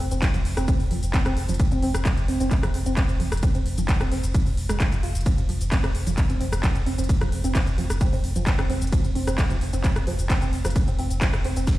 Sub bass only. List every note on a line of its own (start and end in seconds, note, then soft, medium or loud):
0.00 0.11 F1 loud
0.11 0.22 F1 medium
0.34 0.44 F1 medium
0.45 0.57 F1 loud
0.57 0.68 F1 medium
0.80 0.90 F1 medium
0.91 1.02 F1 loud
1.03 1.14 F1 medium
1.26 1.36 F1 medium
1.37 1.48 F1 loud
1.49 1.59 F1 medium
1.72 1.82 F1 medium
1.83 1.94 F1 loud
1.95 2.05 F1 medium
2.18 2.28 F1 medium
2.28 2.40 F1 loud
2.40 2.51 F1 medium
2.63 2.74 F1 medium
2.74 2.86 F1 loud
2.86 2.97 F1 medium
3.09 3.19 F1 medium
3.20 3.31 F1 loud
3.32 3.43 F1 medium
3.55 3.65 F1 medium
3.66 3.77 F1 loud
3.78 3.88 F1 medium
4.01 4.11 F1 medium
4.12 4.23 F1 loud
4.24 4.34 F1 medium
4.47 4.57 F1 medium
4.57 4.69 F1 loud
4.69 4.80 F1 medium
4.92 5.03 F1 medium
5.03 5.15 F1 loud
5.15 5.26 F1 medium
5.38 5.48 F1 medium
5.49 5.60 F1 loud
5.61 5.72 F1 medium
5.84 5.94 F1 medium
5.95 6.06 F1 loud
6.07 6.17 F1 medium
6.30 6.40 F1 medium
6.40 6.52 F1 loud
6.53 6.63 F1 medium
6.75 6.86 F1 medium
6.86 6.98 F1 loud
6.98 7.09 F1 medium
7.21 7.32 F1 medium
7.32 7.44 F1 loud
7.44 7.55 F1 medium
7.67 7.77 F1 medium
7.78 7.89 F1 loud
7.90 8.01 F1 medium
8.13 8.23 F1 medium
8.24 8.35 F1 loud
8.36 8.46 F1 medium
8.59 8.69 F1 medium
8.69 8.81 F1 loud
8.82 8.92 F1 medium
9.04 9.15 F1 medium
9.15 9.27 F1 loud
9.27 9.38 F1 medium
9.50 9.61 F1 medium
9.61 9.73 F1 loud
9.73 9.84 F1 medium
9.96 10.06 F1 medium
10.07 10.18 F1 loud
10.19 10.30 F1 medium
10.42 10.52 F1 medium
10.53 10.64 F1 loud
10.65 10.75 F1 medium
10.88 10.98 F1 medium
10.99 11.10 F1 loud
11.11 11.21 F1 medium
11.34 11.44 F1 medium
11.44 11.56 F1 loud
11.56 11.67 F1 medium